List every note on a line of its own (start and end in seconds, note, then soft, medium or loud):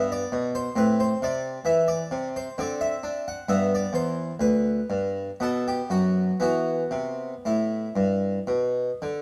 0.00 0.22 G2 medium
0.00 0.71 B3 soft
0.12 0.48 D5 loud
0.32 0.67 B2 medium
0.55 0.76 C5 loud
0.76 1.11 A2 medium
0.76 2.53 C4 soft
0.76 0.98 B4 loud
1.00 1.21 C5 medium
1.22 1.58 C3 medium
1.22 1.67 D5 medium
1.65 2.01 E3 medium
1.65 1.88 E5 medium
1.88 2.27 D5 medium
2.11 2.47 C3 medium
2.36 2.57 C5 medium
2.58 2.93 D3 medium
2.58 3.43 C4 soft
2.58 2.80 D5 medium
2.81 3.24 E5 loud
3.03 3.38 D4 medium
3.28 3.48 F#5 medium
3.49 3.84 G2 medium
3.49 5.36 B3 soft
3.49 3.70 E5 medium
3.75 3.95 D5 medium
3.93 4.31 E2 medium
3.93 4.34 C5 medium
4.40 4.79 D2 soft
4.40 5.24 B4 medium
4.90 5.29 G2 soft
5.40 5.80 B2 medium
5.40 6.37 B3 soft
5.40 5.65 A4 medium
5.68 5.90 G4 medium
5.90 6.30 F#2 soft
5.90 6.41 F#4 medium
6.40 6.82 E3 medium
6.40 9.22 B3 soft
6.40 7.30 F#4 medium
6.91 7.33 C3 soft
7.45 7.86 A2 soft
7.45 8.49 E4 soft
7.96 8.37 G2 soft
8.47 8.89 B2 medium
9.02 9.22 D3 soft